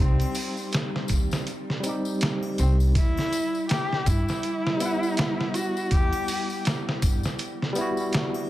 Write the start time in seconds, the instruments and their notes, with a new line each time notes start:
Already playing: tine electric piano G3 C4 D#4 G4, synth drone G3
0.00 upright bass C2, cello C4
0.20 closed hi-hat, triangle
0.35 open hi-hat, tambourine
0.57 tambourine
0.72 snare, closed hi-hat, tambourine
0.96 snare
1.08 upright bass D#2, kick, closed hi-hat, tambourine
1.31 snare, tambourine
1.47 closed hi-hat, tambourine
1.70 snare
1.80 tine electric piano G3 C4, closed hi-hat, tambourine
1.86 tine electric piano D#4 G4
2.05 tambourine
2.21 snare, closed hi-hat, tambourine
2.43 triangle
2.58 upright bass C2, cello C4, closed hi-hat, tambourine
2.80 tambourine, triangle
2.95 upright bass E2, cello E4, kick, closed hi-hat, tambourine
3.17 snare, triangle
3.33 closed hi-hat, tambourine
3.55 tambourine
3.69 cello G4, snare, closed hi-hat, tambourine
3.93 snare
4.06 upright bass G2, cello E4, kick, closed hi-hat, tambourine
4.28 snare, tambourine
4.43 closed hi-hat, tambourine
4.67 snare
4.77 tine electric piano G3 B3, closed hi-hat, tambourine
4.83 tine electric piano E4 F#5
5.03 tambourine
5.17 snare, closed hi-hat, tambourine
5.41 snare
5.54 cello F#4, closed hi-hat, tambourine
5.77 tambourine
5.91 upright bass E2, cello G4, kick, closed hi-hat, tambourine
6.13 closed hi-hat, triangle
6.28 open hi-hat, tambourine
6.50 tambourine
6.65 snare, closed hi-hat, tambourine
6.89 snare
7.02 upright bass G2, kick, closed hi-hat, tambourine
7.23 snare, tambourine
7.39 closed hi-hat, tambourine
7.62 snare
7.73 tine electric piano G3 B3, closed hi-hat, tambourine
7.78 tine electric piano E4 F#4
7.97 tambourine
8.12 snare, closed hi-hat, tambourine
8.34 triangle